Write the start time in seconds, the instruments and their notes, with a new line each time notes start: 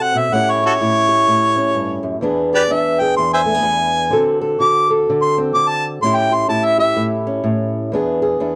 Already playing: steel-string acoustic guitar C3 C4 F#4 A4
0.03 harmonica F#5
0.15 steel-string acoustic guitar B2, harmonica E5
0.32 steel-string acoustic guitar A2 C#4 E4 G4, harmonica F#5
0.51 harmonica C#5
0.63 harmonica F#4 A4 C#5, steel-string acoustic guitar G4
0.81 steel-string acoustic guitar A2 E4
1.09 steel-string acoustic guitar G4
1.28 steel-string acoustic guitar A2
1.56 steel-string acoustic guitar C#4
1.75 steel-string acoustic guitar G2
2.03 steel-string acoustic guitar F#2
2.21 steel-string acoustic guitar E2 B3 D4 G#4
2.53 harmonica G4 B4 D5, steel-string acoustic guitar G#4
2.70 steel-string acoustic guitar E2 D4, harmonica E5
3.00 steel-string acoustic guitar G#4, harmonica G5
3.17 steel-string acoustic guitar E2, harmonica C6
3.34 harmonica C5 E5 G#5
3.45 steel-string acoustic guitar A3
3.54 steel-string acoustic guitar B3
3.63 steel-string acoustic guitar E2
4.10 steel-string acoustic guitar D3 C4 F#4 A4
4.41 steel-string acoustic guitar A4
4.60 steel-string acoustic guitar D3 F#4, harmonica D6
4.90 steel-string acoustic guitar A4
5.10 steel-string acoustic guitar D3
5.22 harmonica C6
5.38 steel-string acoustic guitar C4
5.54 steel-string acoustic guitar D3, harmonica D6
5.69 harmonica A5
6.03 steel-string acoustic guitar A2 C#4 E4 G4, harmonica C6
6.16 harmonica G5
6.31 steel-string acoustic guitar G4, harmonica C6
6.48 steel-string acoustic guitar A2 E4, harmonica A5
6.65 harmonica E5
6.78 steel-string acoustic guitar G4, harmonica E5
6.97 steel-string acoustic guitar A2
7.27 steel-string acoustic guitar C#4
7.44 steel-string acoustic guitar A2
7.92 steel-string acoustic guitar E2 B3 D4 G#4
8.22 steel-string acoustic guitar G#4
8.40 steel-string acoustic guitar E2 D4